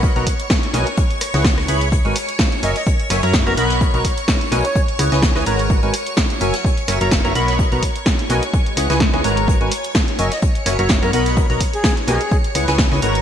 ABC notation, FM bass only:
X:1
M:4/4
L:1/16
Q:"Swing 16ths" 1/4=127
K:B
V:1 name="FM bass" clef=bass
B,,, B,,, z4 B,,, z4 C,,3 C,,2- | C,, G,,, z4 F,,, z3 F,,, F,,2 F,,, B,,,2- | B,,, B,,, z4 B,,, z3 C,, C,,2 C,, G,,,2- | G,,, G,,, z4 F,,, z3 F,,, F,,,2 F,,, B,,,2- |
B,,, B,,, z4 B,,, z3 C,, C,,2 C,, G,,,2- | G,,, G,,, z4 F,,, z3 F,,, F,,,2 F,, B,,,2- | B,,, B,,, z4 B,,, z3 C,, C,,2 C,, G,,,2 |]